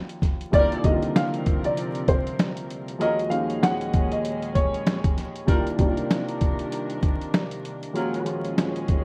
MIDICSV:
0, 0, Header, 1, 6, 480
1, 0, Start_track
1, 0, Key_signature, -3, "minor"
1, 0, Tempo, 618557
1, 413, Time_signature, 4, 2, 24, 8
1, 7017, End_track
2, 0, Start_track
2, 0, Title_t, "Upright piano"
2, 0, Program_c, 0, 0
2, 417, Note_on_c, 0, 74, 112
2, 631, Note_off_c, 0, 74, 0
2, 653, Note_on_c, 0, 75, 88
2, 869, Note_off_c, 0, 75, 0
2, 899, Note_on_c, 0, 77, 93
2, 1254, Note_off_c, 0, 77, 0
2, 1281, Note_on_c, 0, 74, 83
2, 1596, Note_off_c, 0, 74, 0
2, 1618, Note_on_c, 0, 72, 77
2, 1832, Note_off_c, 0, 72, 0
2, 2338, Note_on_c, 0, 75, 108
2, 2552, Note_off_c, 0, 75, 0
2, 2561, Note_on_c, 0, 77, 86
2, 2782, Note_off_c, 0, 77, 0
2, 2814, Note_on_c, 0, 78, 94
2, 3172, Note_off_c, 0, 78, 0
2, 3199, Note_on_c, 0, 75, 76
2, 3515, Note_off_c, 0, 75, 0
2, 3532, Note_on_c, 0, 73, 90
2, 3891, Note_off_c, 0, 73, 0
2, 7017, End_track
3, 0, Start_track
3, 0, Title_t, "Horn section"
3, 0, Program_c, 1, 61
3, 420, Note_on_c, 1, 55, 96
3, 420, Note_on_c, 1, 65, 96
3, 420, Note_on_c, 1, 70, 110
3, 741, Note_off_c, 1, 55, 0
3, 741, Note_off_c, 1, 65, 0
3, 741, Note_off_c, 1, 70, 0
3, 2331, Note_on_c, 1, 54, 92
3, 2331, Note_on_c, 1, 65, 91
3, 2331, Note_on_c, 1, 70, 107
3, 2484, Note_off_c, 1, 65, 0
3, 2485, Note_off_c, 1, 54, 0
3, 2485, Note_off_c, 1, 70, 0
3, 4252, Note_on_c, 1, 55, 105
3, 4252, Note_on_c, 1, 65, 103
3, 4252, Note_on_c, 1, 70, 106
3, 4405, Note_off_c, 1, 55, 0
3, 4405, Note_off_c, 1, 65, 0
3, 4405, Note_off_c, 1, 70, 0
3, 6179, Note_on_c, 1, 54, 102
3, 6179, Note_on_c, 1, 65, 105
3, 6180, Note_on_c, 1, 70, 116
3, 6501, Note_off_c, 1, 54, 0
3, 6501, Note_off_c, 1, 65, 0
3, 6501, Note_off_c, 1, 70, 0
3, 7017, End_track
4, 0, Start_track
4, 0, Title_t, "Grand piano"
4, 0, Program_c, 2, 0
4, 0, Control_c, 2, 64, 127
4, 0, Note_on_c, 2, 39, 71
4, 0, Note_on_c, 2, 53, 67
4, 0, Note_on_c, 2, 56, 67
4, 0, Note_on_c, 2, 58, 66
4, 0, Note_on_c, 2, 61, 64
4, 0, Note_on_c, 2, 65, 84
4, 0, Note_on_c, 2, 66, 86
4, 398, Note_on_c, 2, 36, 70
4, 402, Note_on_c, 2, 51, 66
4, 406, Note_on_c, 2, 55, 72
4, 409, Note_off_c, 2, 58, 0
4, 409, Note_on_c, 2, 58, 70
4, 412, Note_on_c, 2, 62, 72
4, 416, Note_off_c, 2, 65, 0
4, 416, Note_on_c, 2, 65, 91
4, 423, Control_c, 2, 64, 0
4, 424, Note_off_c, 2, 61, 0
4, 425, Note_off_c, 2, 39, 0
4, 425, Note_off_c, 2, 66, 0
4, 427, Note_off_c, 2, 53, 0
4, 428, Note_off_c, 2, 56, 0
4, 563, Control_c, 2, 64, 127
4, 631, Note_off_c, 2, 36, 0
4, 633, Note_off_c, 2, 51, 0
4, 635, Note_off_c, 2, 55, 0
4, 636, Note_off_c, 2, 58, 0
4, 638, Note_off_c, 2, 62, 0
4, 640, Note_off_c, 2, 65, 0
4, 652, Note_on_c, 2, 36, 76
4, 656, Note_on_c, 2, 51, 65
4, 659, Note_on_c, 2, 55, 71
4, 663, Note_on_c, 2, 58, 72
4, 666, Note_on_c, 2, 50, 74
4, 670, Note_on_c, 2, 63, 67
4, 720, Note_on_c, 2, 65, 86
4, 721, Note_off_c, 2, 63, 0
4, 1554, Note_off_c, 2, 36, 0
4, 1556, Note_off_c, 2, 51, 0
4, 1557, Note_off_c, 2, 55, 0
4, 1559, Note_off_c, 2, 58, 0
4, 1561, Note_off_c, 2, 50, 0
4, 1588, Note_off_c, 2, 65, 0
4, 2315, Note_on_c, 2, 39, 76
4, 2318, Note_on_c, 2, 53, 72
4, 2322, Note_on_c, 2, 56, 68
4, 2325, Note_on_c, 2, 58, 68
4, 2329, Note_on_c, 2, 61, 68
4, 2333, Note_on_c, 2, 66, 83
4, 2343, Control_c, 2, 64, 0
4, 2469, Control_c, 2, 64, 127
4, 2543, Note_off_c, 2, 39, 0
4, 2547, Note_off_c, 2, 53, 0
4, 2550, Note_off_c, 2, 56, 0
4, 2553, Note_off_c, 2, 58, 0
4, 2555, Note_on_c, 2, 39, 75
4, 2556, Note_off_c, 2, 61, 0
4, 2558, Note_off_c, 2, 66, 0
4, 2558, Note_on_c, 2, 53, 70
4, 2562, Note_on_c, 2, 56, 73
4, 2565, Note_on_c, 2, 58, 70
4, 2569, Note_on_c, 2, 61, 66
4, 2572, Note_on_c, 2, 63, 83
4, 3465, Note_off_c, 2, 39, 0
4, 3467, Note_off_c, 2, 53, 0
4, 3469, Note_off_c, 2, 56, 0
4, 3470, Note_off_c, 2, 58, 0
4, 3473, Note_off_c, 2, 61, 0
4, 3474, Note_off_c, 2, 63, 0
4, 4238, Note_on_c, 2, 36, 72
4, 4242, Note_on_c, 2, 51, 67
4, 4246, Note_on_c, 2, 55, 73
4, 4249, Note_on_c, 2, 58, 69
4, 4253, Note_on_c, 2, 62, 71
4, 4256, Note_on_c, 2, 65, 92
4, 4261, Control_c, 2, 64, 0
4, 4379, Control_c, 2, 64, 127
4, 4471, Note_off_c, 2, 36, 0
4, 4473, Note_off_c, 2, 51, 0
4, 4474, Note_off_c, 2, 55, 0
4, 4476, Note_off_c, 2, 58, 0
4, 4478, Note_off_c, 2, 62, 0
4, 4480, Note_off_c, 2, 65, 0
4, 4492, Note_on_c, 2, 36, 74
4, 4495, Note_on_c, 2, 51, 68
4, 4499, Note_on_c, 2, 55, 75
4, 4503, Note_on_c, 2, 58, 67
4, 4506, Note_on_c, 2, 62, 71
4, 4510, Note_on_c, 2, 63, 68
4, 4560, Note_on_c, 2, 65, 87
4, 4561, Note_off_c, 2, 63, 0
4, 5394, Note_off_c, 2, 36, 0
4, 5396, Note_off_c, 2, 51, 0
4, 5398, Note_off_c, 2, 55, 0
4, 5399, Note_off_c, 2, 58, 0
4, 5401, Note_off_c, 2, 62, 0
4, 5428, Note_off_c, 2, 65, 0
4, 6156, Note_on_c, 2, 39, 73
4, 6160, Note_on_c, 2, 53, 71
4, 6163, Note_on_c, 2, 56, 69
4, 6167, Note_on_c, 2, 58, 70
4, 6170, Note_on_c, 2, 61, 71
4, 6173, Note_on_c, 2, 66, 91
4, 6183, Control_c, 2, 64, 0
4, 6322, Control_c, 2, 64, 127
4, 6385, Note_off_c, 2, 39, 0
4, 6389, Note_off_c, 2, 53, 0
4, 6392, Note_off_c, 2, 56, 0
4, 6395, Note_off_c, 2, 58, 0
4, 6396, Note_on_c, 2, 39, 71
4, 6397, Note_off_c, 2, 61, 0
4, 6398, Note_off_c, 2, 66, 0
4, 6400, Note_on_c, 2, 53, 70
4, 6404, Note_on_c, 2, 56, 71
4, 6408, Note_on_c, 2, 58, 70
4, 6411, Note_on_c, 2, 61, 67
4, 6414, Note_on_c, 2, 65, 86
4, 7017, Note_off_c, 2, 39, 0
4, 7017, Note_off_c, 2, 53, 0
4, 7017, Note_off_c, 2, 56, 0
4, 7017, Note_off_c, 2, 58, 0
4, 7017, Note_off_c, 2, 61, 0
4, 7017, Note_off_c, 2, 65, 0
4, 7017, End_track
5, 0, Start_track
5, 0, Title_t, "String section"
5, 0, Program_c, 3, 48
5, 412, Note_on_c, 3, 36, 73
5, 412, Note_on_c, 3, 48, 75
5, 412, Note_on_c, 3, 53, 71
5, 412, Note_on_c, 3, 60, 74
5, 412, Note_on_c, 3, 70, 71
5, 2313, Note_off_c, 3, 36, 0
5, 2313, Note_off_c, 3, 48, 0
5, 2313, Note_off_c, 3, 53, 0
5, 2313, Note_off_c, 3, 60, 0
5, 2313, Note_off_c, 3, 70, 0
5, 2318, Note_on_c, 3, 46, 73
5, 2318, Note_on_c, 3, 56, 71
5, 2318, Note_on_c, 3, 61, 74
5, 2318, Note_on_c, 3, 68, 74
5, 2319, Note_on_c, 3, 39, 77
5, 4226, Note_off_c, 3, 39, 0
5, 4226, Note_off_c, 3, 46, 0
5, 4226, Note_off_c, 3, 56, 0
5, 4226, Note_off_c, 3, 61, 0
5, 4226, Note_off_c, 3, 68, 0
5, 4244, Note_on_c, 3, 48, 69
5, 4244, Note_on_c, 3, 51, 69
5, 4244, Note_on_c, 3, 70, 71
5, 4245, Note_on_c, 3, 36, 74
5, 4245, Note_on_c, 3, 62, 73
5, 6149, Note_off_c, 3, 48, 0
5, 6149, Note_off_c, 3, 51, 0
5, 6149, Note_off_c, 3, 62, 0
5, 6149, Note_off_c, 3, 70, 0
5, 6150, Note_off_c, 3, 36, 0
5, 6178, Note_on_c, 3, 39, 81
5, 6178, Note_on_c, 3, 61, 72
5, 6178, Note_on_c, 3, 68, 70
5, 6179, Note_on_c, 3, 46, 67
5, 6179, Note_on_c, 3, 56, 71
5, 7017, Note_off_c, 3, 39, 0
5, 7017, Note_off_c, 3, 46, 0
5, 7017, Note_off_c, 3, 56, 0
5, 7017, Note_off_c, 3, 61, 0
5, 7017, Note_off_c, 3, 68, 0
5, 7017, End_track
6, 0, Start_track
6, 0, Title_t, "Drums"
6, 72, Note_on_c, 9, 42, 61
6, 150, Note_off_c, 9, 42, 0
6, 171, Note_on_c, 9, 36, 89
6, 178, Note_on_c, 9, 38, 33
6, 179, Note_on_c, 9, 42, 72
6, 249, Note_off_c, 9, 36, 0
6, 256, Note_off_c, 9, 38, 0
6, 256, Note_off_c, 9, 42, 0
6, 317, Note_on_c, 9, 42, 59
6, 395, Note_off_c, 9, 42, 0
6, 413, Note_on_c, 9, 36, 117
6, 416, Note_on_c, 9, 42, 88
6, 490, Note_off_c, 9, 36, 0
6, 493, Note_off_c, 9, 42, 0
6, 559, Note_on_c, 9, 42, 49
6, 637, Note_off_c, 9, 42, 0
6, 652, Note_on_c, 9, 42, 78
6, 653, Note_on_c, 9, 36, 94
6, 729, Note_off_c, 9, 42, 0
6, 731, Note_off_c, 9, 36, 0
6, 795, Note_on_c, 9, 42, 55
6, 873, Note_off_c, 9, 42, 0
6, 899, Note_on_c, 9, 38, 117
6, 902, Note_on_c, 9, 42, 105
6, 903, Note_on_c, 9, 40, 95
6, 977, Note_off_c, 9, 38, 0
6, 979, Note_off_c, 9, 42, 0
6, 980, Note_off_c, 9, 40, 0
6, 1038, Note_on_c, 9, 42, 50
6, 1115, Note_off_c, 9, 42, 0
6, 1134, Note_on_c, 9, 42, 66
6, 1137, Note_on_c, 9, 36, 92
6, 1211, Note_off_c, 9, 42, 0
6, 1215, Note_off_c, 9, 36, 0
6, 1275, Note_on_c, 9, 42, 56
6, 1352, Note_off_c, 9, 42, 0
6, 1376, Note_on_c, 9, 42, 97
6, 1454, Note_off_c, 9, 42, 0
6, 1513, Note_on_c, 9, 42, 54
6, 1590, Note_off_c, 9, 42, 0
6, 1614, Note_on_c, 9, 36, 88
6, 1614, Note_on_c, 9, 42, 71
6, 1692, Note_off_c, 9, 36, 0
6, 1692, Note_off_c, 9, 42, 0
6, 1760, Note_on_c, 9, 42, 50
6, 1838, Note_off_c, 9, 42, 0
6, 1857, Note_on_c, 9, 42, 81
6, 1858, Note_on_c, 9, 38, 120
6, 1862, Note_on_c, 9, 40, 101
6, 1934, Note_off_c, 9, 42, 0
6, 1936, Note_off_c, 9, 38, 0
6, 1940, Note_off_c, 9, 40, 0
6, 1993, Note_on_c, 9, 42, 63
6, 2070, Note_off_c, 9, 42, 0
6, 2099, Note_on_c, 9, 42, 73
6, 2176, Note_off_c, 9, 42, 0
6, 2237, Note_on_c, 9, 42, 61
6, 2314, Note_off_c, 9, 42, 0
6, 2334, Note_on_c, 9, 42, 88
6, 2412, Note_off_c, 9, 42, 0
6, 2478, Note_on_c, 9, 42, 50
6, 2556, Note_off_c, 9, 42, 0
6, 2571, Note_on_c, 9, 42, 79
6, 2649, Note_off_c, 9, 42, 0
6, 2715, Note_on_c, 9, 42, 55
6, 2792, Note_off_c, 9, 42, 0
6, 2819, Note_on_c, 9, 38, 116
6, 2821, Note_on_c, 9, 42, 108
6, 2822, Note_on_c, 9, 40, 93
6, 2896, Note_off_c, 9, 38, 0
6, 2899, Note_off_c, 9, 42, 0
6, 2900, Note_off_c, 9, 40, 0
6, 2957, Note_on_c, 9, 42, 53
6, 3035, Note_off_c, 9, 42, 0
6, 3054, Note_on_c, 9, 42, 69
6, 3057, Note_on_c, 9, 36, 92
6, 3132, Note_off_c, 9, 42, 0
6, 3135, Note_off_c, 9, 36, 0
6, 3194, Note_on_c, 9, 42, 57
6, 3272, Note_off_c, 9, 42, 0
6, 3297, Note_on_c, 9, 42, 95
6, 3374, Note_off_c, 9, 42, 0
6, 3433, Note_on_c, 9, 42, 55
6, 3511, Note_off_c, 9, 42, 0
6, 3534, Note_on_c, 9, 36, 91
6, 3534, Note_on_c, 9, 42, 72
6, 3611, Note_off_c, 9, 42, 0
6, 3612, Note_off_c, 9, 36, 0
6, 3680, Note_on_c, 9, 42, 51
6, 3758, Note_off_c, 9, 42, 0
6, 3775, Note_on_c, 9, 42, 82
6, 3777, Note_on_c, 9, 38, 126
6, 3781, Note_on_c, 9, 40, 95
6, 3853, Note_off_c, 9, 42, 0
6, 3855, Note_off_c, 9, 38, 0
6, 3858, Note_off_c, 9, 40, 0
6, 3912, Note_on_c, 9, 42, 63
6, 3913, Note_on_c, 9, 36, 96
6, 3990, Note_off_c, 9, 42, 0
6, 3991, Note_off_c, 9, 36, 0
6, 4017, Note_on_c, 9, 38, 35
6, 4018, Note_on_c, 9, 42, 72
6, 4095, Note_off_c, 9, 38, 0
6, 4095, Note_off_c, 9, 42, 0
6, 4156, Note_on_c, 9, 42, 62
6, 4234, Note_off_c, 9, 42, 0
6, 4252, Note_on_c, 9, 36, 115
6, 4254, Note_on_c, 9, 42, 89
6, 4330, Note_off_c, 9, 36, 0
6, 4332, Note_off_c, 9, 42, 0
6, 4398, Note_on_c, 9, 42, 51
6, 4476, Note_off_c, 9, 42, 0
6, 4491, Note_on_c, 9, 42, 78
6, 4493, Note_on_c, 9, 36, 96
6, 4569, Note_off_c, 9, 42, 0
6, 4570, Note_off_c, 9, 36, 0
6, 4635, Note_on_c, 9, 42, 54
6, 4713, Note_off_c, 9, 42, 0
6, 4739, Note_on_c, 9, 38, 118
6, 4741, Note_on_c, 9, 42, 105
6, 4742, Note_on_c, 9, 40, 97
6, 4816, Note_off_c, 9, 38, 0
6, 4819, Note_off_c, 9, 42, 0
6, 4820, Note_off_c, 9, 40, 0
6, 4877, Note_on_c, 9, 42, 51
6, 4955, Note_off_c, 9, 42, 0
6, 4973, Note_on_c, 9, 42, 68
6, 4977, Note_on_c, 9, 36, 89
6, 5051, Note_off_c, 9, 42, 0
6, 5055, Note_off_c, 9, 36, 0
6, 5114, Note_on_c, 9, 42, 55
6, 5191, Note_off_c, 9, 42, 0
6, 5216, Note_on_c, 9, 42, 96
6, 5294, Note_off_c, 9, 42, 0
6, 5352, Note_on_c, 9, 42, 54
6, 5430, Note_off_c, 9, 42, 0
6, 5452, Note_on_c, 9, 42, 73
6, 5454, Note_on_c, 9, 36, 92
6, 5530, Note_off_c, 9, 42, 0
6, 5532, Note_off_c, 9, 36, 0
6, 5599, Note_on_c, 9, 42, 49
6, 5676, Note_off_c, 9, 42, 0
6, 5695, Note_on_c, 9, 42, 81
6, 5696, Note_on_c, 9, 38, 123
6, 5700, Note_on_c, 9, 40, 93
6, 5772, Note_off_c, 9, 42, 0
6, 5774, Note_off_c, 9, 38, 0
6, 5778, Note_off_c, 9, 40, 0
6, 5830, Note_on_c, 9, 42, 62
6, 5908, Note_off_c, 9, 42, 0
6, 5937, Note_on_c, 9, 42, 73
6, 6014, Note_off_c, 9, 42, 0
6, 6075, Note_on_c, 9, 42, 61
6, 6152, Note_off_c, 9, 42, 0
6, 6174, Note_on_c, 9, 42, 90
6, 6251, Note_off_c, 9, 42, 0
6, 6317, Note_on_c, 9, 42, 51
6, 6395, Note_off_c, 9, 42, 0
6, 6410, Note_on_c, 9, 42, 82
6, 6488, Note_off_c, 9, 42, 0
6, 6553, Note_on_c, 9, 42, 55
6, 6631, Note_off_c, 9, 42, 0
6, 6657, Note_on_c, 9, 38, 117
6, 6660, Note_on_c, 9, 42, 106
6, 6661, Note_on_c, 9, 40, 93
6, 6735, Note_off_c, 9, 38, 0
6, 6738, Note_off_c, 9, 42, 0
6, 6739, Note_off_c, 9, 40, 0
6, 6797, Note_on_c, 9, 42, 52
6, 6874, Note_off_c, 9, 42, 0
6, 6893, Note_on_c, 9, 42, 67
6, 6897, Note_on_c, 9, 36, 94
6, 6970, Note_off_c, 9, 42, 0
6, 6974, Note_off_c, 9, 36, 0
6, 7017, End_track
0, 0, End_of_file